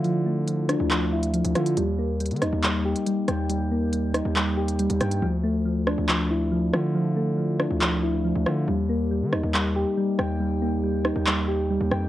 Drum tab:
HH |x-------x---x---------x-x-x-x-x-|x-------xxxxx---------x-x---x---|x-------x---x---------x-x-x-x-x-|--------------------------------|
CP |----------------x---------------|----------------x---------------|----------------x---------------|----------------x---------------|
SD |------------r---------------r---|------------r---------------r---|------------r---------------r---|------------r---------------r---|

HH |--------------------------------|--------------------------------|--------------------------------|
CP |----------------x---------------|----------------x---------------|----------------x---------------|
SD |------------r---------------r---|------------r---------------r---|------------r---------------r---|